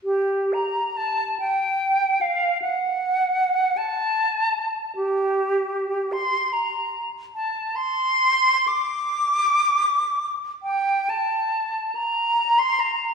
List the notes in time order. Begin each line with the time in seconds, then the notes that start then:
0.04 G4
0.53 A#5
0.97 A5
1.40 G5
2.21 F5
2.62 F#5
3.77 A5
4.96 G4
6.12 C6
6.53 A#5
7.35 A5
7.76 C6
8.68 D6
10.63 G5
11.09 A5
11.95 A#5
12.59 C6
12.80 A#5